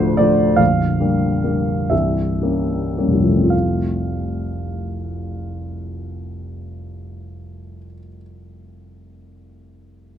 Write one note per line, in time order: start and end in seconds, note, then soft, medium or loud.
0.00 0.62 D1 soft
0.00 0.61 D2 soft
0.00 0.14 F3 soft
0.00 0.15 A3 soft
0.00 0.15 D4 soft
0.00 0.18 C5 medium
0.17 0.55 F3 soft
0.17 0.55 A3 soft
0.17 0.55 D4 soft
0.17 0.58 D5 medium
0.56 0.98 A#0 soft
0.56 0.99 A#1 soft
0.56 1.89 F5 medium
1.00 1.40 G3 soft
1.00 1.40 A#3 soft
1.00 1.40 D4 soft
1.44 1.86 G3 soft
1.44 1.86 A#3 soft
1.44 1.87 D4 soft
1.90 2.40 C1 soft
1.90 2.40 C2 soft
1.90 3.52 E5 soft
2.42 2.94 G3 soft
2.42 2.94 A#3 soft
2.42 2.95 C#4 soft
2.98 3.48 G3 soft
2.98 3.48 A#3 soft
2.98 3.48 C#4 soft
3.05 7.76 F1 soft
3.13 7.84 C2 soft
3.21 7.92 F3 soft
3.28 7.99 A3 soft
3.36 8.07 C4 soft
3.44 8.15 F4 soft
3.50 8.21 F5 soft